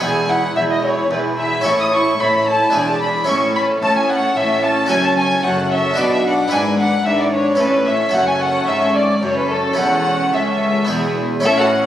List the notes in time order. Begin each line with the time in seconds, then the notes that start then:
Already playing: B3
0.00 E1 E2 E4 G#4 G#5
0.29 E4 G#4 F#5
0.56 E1 E2 E4 G#4 E5
0.70 D#5
0.84 E4 G#4 C#5
1.11 E1 E2 E4 G#4 B4
1.37 E4 G#4 E5
1.61 C#4 E4 A4
1.65 A1 A2 E4 C#6
1.80 D#6
1.92 E4 A4 C#6
2.20 A1 A2 E4 A4 B5
2.47 E4 A4 A5
2.70 D4 E4 G#4
2.74 E1 E2 G#4 G#5
2.88 A5
3.01 D4 G#4 B5
3.24 C#4 E4 A4
3.28 A1 A2 C#4 A4 C#6
3.56 C#4 A4 B5
3.82 A1 A2 C#4 A4 A5
3.96 G#5
4.09 C#4 A4 F#5
4.36 A1 A2 C#4 A4 E5
4.64 C#4 A4 A5
4.86 C#4 F#4 A4
4.90 F#1 F#2 C#4 A4 G#5
5.04 A5
5.17 C#4 A4 G#5
5.43 F#1 F#2 C#4 A4 F#5
5.71 C#4 A4 E5
5.94 B2 D4 F#4 B4
5.98 B1 B2 B4 D5
6.12 E5
6.24 D4 B4 F#5
6.48 G#1 D4 E4 B4
6.52 G#2 B4 G#5
6.79 D4 B4 F#5
7.06 G#1 G#2 D4 B4 E5
7.20 D5
7.32 D4 B4 C#5
7.55 A2 C#4 A4
7.60 A1 A2 C#4 A4 B4
7.87 C#4 A4 E5
8.09 C#4 A4
8.14 F#1 F#2 C#4 A4 F#5
8.27 G#5
8.41 F#5
8.68 G#1 G#2 E5
8.95 D5
9.23 F#1 F#2 C#4 A4 C#5
9.37 B4
9.51 A4
9.73 C#4 E4 A4
9.78 E1 E2 C#4 A4 F#5
10.34 C#2 C#4 A4 E5
10.85 B3 E4 G#4
10.89 E1 E2 B3 G#4
11.40 C#4 E4 A4
11.45 A1 A2 C#4 E4 A4 E5
11.59 F#4 A4 F#5